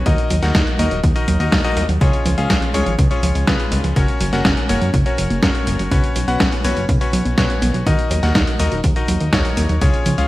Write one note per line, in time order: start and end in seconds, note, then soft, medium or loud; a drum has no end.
0.06 0.16 D#2 loud
0.06 0.18 D#3 medium
0.06 0.40 D#4 medium
0.06 0.40 F#4 medium
0.06 0.40 A#4 medium
0.06 0.40 D#5 medium
0.06 kick loud
0.06 closed hi-hat medium
0.18 closed hi-hat soft
0.30 0.40 D#2 medium
0.30 0.41 F#3 loud
0.30 closed hi-hat medium
0.42 0.52 D#2 medium
0.42 0.53 A#3 medium
0.42 0.76 D#4 medium
0.42 0.76 F#4 medium
0.42 0.76 A#4 medium
0.42 0.76 F#5 loud
0.42 snare soft
0.42 closed hi-hat soft
0.55 0.64 D#2 loud
0.55 0.65 D#4 medium
0.55 kick loud
0.55 snare loud
0.55 closed hi-hat medium
0.67 closed hi-hat soft
0.79 0.89 D#2 loud
0.79 0.89 A#3 medium
0.79 0.98 D#4 medium
0.79 0.98 F#4 medium
0.79 0.98 A#4 medium
0.79 0.98 D#5 loud
0.79 closed hi-hat medium
0.91 1.01 D#1 medium
0.91 1.02 F#3 medium
0.91 closed hi-hat soft
1.03 1.13 D#2 loud
1.03 1.15 D#3 medium
1.03 kick loud
1.03 closed hi-hat medium
1.16 1.38 D#4 medium
1.16 1.38 F#4 medium
1.16 1.38 A#4 medium
1.16 1.38 D#5 medium
1.16 closed hi-hat soft
1.28 1.37 D#2 medium
1.28 1.38 F#3 loud
1.28 closed hi-hat medium
1.40 1.50 D#2 medium
1.40 1.50 A#3 medium
1.40 1.62 D#4 medium
1.40 1.62 F#4 medium
1.40 1.62 A#4 medium
1.40 1.62 D#5 medium
1.40 closed hi-hat soft
1.52 1.62 D#2 loud
1.52 1.63 D#4 medium
1.52 kick loud
1.52 snare loud
1.52 closed hi-hat medium
1.64 1.83 D#4 loud
1.64 1.83 F#4 medium
1.64 1.83 A#4 medium
1.64 1.83 D#5 loud
1.64 closed hi-hat soft
1.77 1.86 D#2 loud
1.77 1.87 A#3 medium
1.77 closed hi-hat medium
1.89 1.98 D#2 medium
1.89 1.99 F#3 medium
1.89 closed hi-hat soft
2.01 2.11 C#2 loud
2.01 2.13 C#3 medium
2.01 2.35 C#4 medium
2.01 2.35 F4 medium
2.01 2.35 G#4 medium
2.01 2.35 C#5 medium
2.01 kick loud
2.01 closed hi-hat medium
2.13 closed hi-hat soft
2.25 2.35 C#2 medium
2.25 2.36 F3 loud
2.25 closed hi-hat medium
2.37 2.47 C#2 medium
2.37 2.48 G#3 medium
2.37 2.71 C#4 medium
2.37 2.71 F4 medium
2.37 2.71 G#4 medium
2.37 2.71 F5 loud
2.37 closed hi-hat soft
2.50 2.59 C#2 loud
2.50 2.60 C#4 medium
2.50 kick loud
2.50 snare loud
2.50 closed hi-hat medium
2.62 closed hi-hat soft
2.74 2.84 C#2 medium
2.74 2.85 G#3 medium
2.74 2.93 C#4 medium
2.74 2.93 F4 medium
2.74 2.93 G#4 medium
2.74 2.93 C#5 loud
2.74 closed hi-hat medium
2.86 2.96 G#1 medium
2.86 2.97 F3 medium
2.86 closed hi-hat soft
2.99 3.08 C#2 loud
2.99 3.10 C#3 medium
2.99 kick loud
2.99 closed hi-hat medium
3.11 3.44 C#4 medium
3.11 3.44 F4 medium
3.11 3.44 G#4 medium
3.11 3.44 C#5 medium
3.11 closed hi-hat soft
3.23 3.32 C#2 medium
3.23 3.33 F3 loud
3.23 closed hi-hat medium
3.35 3.45 C#2 medium
3.35 3.46 G#3 medium
3.35 closed hi-hat soft
3.47 3.57 C#2 loud
3.47 3.93 C#4 medium
3.47 3.58 C#4 medium
3.47 3.93 F4 medium
3.47 3.93 G#4 medium
3.47 3.93 B4 medium
3.47 kick loud
3.47 snare loud
3.47 closed hi-hat medium
3.60 closed hi-hat soft
3.72 3.81 C#2 loud
3.72 3.82 G#3 medium
3.72 closed hi-hat medium
3.84 3.93 C#2 medium
3.84 3.94 F3 medium
3.84 closed hi-hat soft
3.96 4.06 F#1 loud
3.96 4.08 C#3 medium
3.96 4.30 C#4 medium
3.96 4.30 F#4 medium
3.96 4.30 A#4 medium
3.96 4.30 C#5 medium
3.96 kick loud
3.96 closed hi-hat medium
4.08 closed hi-hat soft
4.20 4.30 F#1 medium
4.20 4.31 F#3 loud
4.20 closed hi-hat medium
4.33 4.42 F#1 medium
4.33 4.43 A#3 medium
4.33 4.66 C#4 medium
4.33 4.66 F#4 medium
4.33 4.66 A#4 medium
4.33 4.66 F#5 loud
4.33 snare soft
4.33 closed hi-hat soft
4.45 4.54 F#1 loud
4.45 4.55 C#4 medium
4.45 kick loud
4.45 snare loud
4.45 closed hi-hat medium
4.57 closed hi-hat soft
4.69 4.79 F#1 medium
4.69 4.80 A#3 medium
4.69 4.88 C#4 loud
4.69 4.88 F#4 medium
4.69 4.88 A#4 medium
4.69 4.88 C#5 loud
4.69 closed hi-hat medium
4.81 4.91 F#2 medium
4.81 4.92 F#3 medium
4.81 closed hi-hat soft
4.94 5.03 F#1 loud
4.94 5.05 C#3 medium
4.94 kick loud
4.94 closed hi-hat medium
5.06 5.40 C#4 medium
5.06 5.40 F#4 medium
5.06 5.40 A#4 medium
5.06 5.40 C#5 medium
5.06 closed hi-hat soft
5.18 5.28 F#1 loud
5.18 5.28 F#3 loud
5.18 closed hi-hat medium
5.30 5.40 F#1 medium
5.30 5.41 A#3 medium
5.30 closed hi-hat soft
5.42 5.52 F#1 loud
5.42 5.88 C#4 medium
5.42 5.53 C#4 medium
5.42 5.88 F#4 medium
5.42 5.88 A#4 medium
5.42 5.88 C#5 medium
5.42 kick loud
5.42 snare loud
5.42 closed hi-hat medium
5.55 closed hi-hat soft
5.67 5.76 F#1 loud
5.67 5.77 A#3 medium
5.67 closed hi-hat medium
5.79 5.89 F#1 medium
5.79 5.89 F#3 medium
5.79 closed hi-hat soft
5.91 6.01 B1 loud
5.91 6.03 C#3 medium
5.91 6.25 C#4 medium
5.91 6.25 F#4 medium
5.91 6.25 B4 medium
5.91 6.25 C#5 medium
5.91 kick loud
5.91 closed hi-hat medium
6.04 closed hi-hat soft
6.16 6.25 B1 medium
6.16 6.26 F#3 loud
6.16 closed hi-hat medium
6.28 6.37 B1 medium
6.28 6.38 B3 medium
6.28 6.62 C#4 medium
6.28 6.62 F#4 medium
6.28 6.62 B4 medium
6.28 6.62 F#5 loud
6.28 closed hi-hat soft
6.40 6.50 B1 loud
6.40 6.50 C#4 medium
6.40 kick loud
6.40 snare loud
6.40 closed hi-hat medium
6.52 closed hi-hat soft
6.64 6.74 B1 medium
6.64 6.75 B3 medium
6.64 6.83 C#4 medium
6.64 6.83 F#4 medium
6.64 6.83 B4 medium
6.64 6.83 C#5 loud
6.64 closed hi-hat medium
6.77 6.86 F#1 medium
6.77 6.87 F#3 medium
6.77 closed hi-hat soft
6.89 6.98 B1 loud
6.89 7.00 C#3 medium
6.89 kick loud
6.89 closed hi-hat medium
7.01 7.35 C#4 medium
7.01 7.35 F#4 medium
7.01 7.35 B4 medium
7.01 7.35 C#5 medium
7.01 closed hi-hat soft
7.13 7.23 B1 medium
7.13 7.24 F#3 loud
7.13 closed hi-hat medium
7.25 7.35 B1 medium
7.25 7.36 B3 medium
7.25 closed hi-hat soft
7.38 7.47 B1 loud
7.38 7.48 C#4 medium
7.38 7.84 C#4 medium
7.38 7.84 F#4 medium
7.38 7.84 B4 medium
7.38 7.84 C#5 medium
7.38 kick loud
7.38 snare loud
7.38 closed hi-hat medium
7.50 closed hi-hat soft
7.62 7.71 B1 loud
7.62 7.72 B3 medium
7.62 closed hi-hat medium
7.74 7.84 B1 medium
7.74 7.84 F#3 medium
7.74 closed hi-hat soft
7.86 7.96 D#2 loud
7.86 7.98 D#3 medium
7.86 8.20 D#4 medium
7.86 8.20 F#4 medium
7.86 8.20 A#4 medium
7.86 8.20 D#5 medium
7.86 kick loud
7.86 closed hi-hat medium
7.99 closed hi-hat soft
8.11 8.20 D#2 medium
8.11 8.21 F#3 loud
8.11 closed hi-hat medium
8.23 8.33 D#2 medium
8.23 8.33 A#3 medium
8.23 8.57 D#4 medium
8.23 8.57 F#4 medium
8.23 8.57 A#4 medium
8.23 8.57 F#5 loud
8.23 snare soft
8.23 closed hi-hat soft
8.35 8.45 D#2 loud
8.35 8.45 D#4 medium
8.35 kick loud
8.35 snare loud
8.35 closed hi-hat medium
8.47 closed hi-hat soft
8.59 8.69 D#2 loud
8.59 8.70 A#3 medium
8.59 8.78 D#4 medium
8.59 8.78 F#4 medium
8.59 8.78 A#4 medium
8.59 8.78 D#5 loud
8.59 closed hi-hat medium
8.72 8.81 D#1 medium
8.72 8.82 F#3 medium
8.72 closed hi-hat soft
8.84 8.94 D#2 loud
8.84 8.96 D#3 medium
8.84 kick loud
8.84 closed hi-hat medium
8.96 9.30 D#4 medium
8.96 9.30 F#4 medium
8.96 9.30 A#4 medium
8.96 9.30 D#5 medium
8.96 closed hi-hat soft
9.08 9.18 D#2 medium
9.08 9.19 F#3 loud
9.08 closed hi-hat medium
9.20 9.30 D#2 medium
9.20 9.31 A#3 medium
9.20 closed hi-hat soft
9.33 9.42 D#2 loud
9.33 9.43 D#4 medium
9.33 9.79 D#4 medium
9.33 9.79 F#4 medium
9.33 9.79 A#4 medium
9.33 9.79 C#5 medium
9.33 kick loud
9.33 snare loud
9.33 closed hi-hat medium
9.45 closed hi-hat soft
9.57 9.67 D#2 loud
9.57 9.67 A#3 medium
9.57 closed hi-hat medium
9.69 9.79 D#2 medium
9.69 9.80 F#3 medium
9.69 closed hi-hat soft
9.81 9.91 C#2 loud
9.81 9.93 C#3 medium
9.81 10.15 C#4 medium
9.81 10.15 F4 medium
9.81 10.15 G#4 medium
9.81 10.15 C#5 medium
9.81 kick loud
9.81 closed hi-hat medium
9.94 closed hi-hat soft
10.06 10.15 C#2 loud
10.06 10.16 F3 loud
10.06 closed hi-hat medium
10.18 10.28 C#2 medium
10.18 10.28 G#3 medium
10.18 10.28 C#4 medium
10.18 10.28 F4 medium
10.18 10.28 G#4 medium
10.18 10.28 F5 loud
10.18 closed hi-hat soft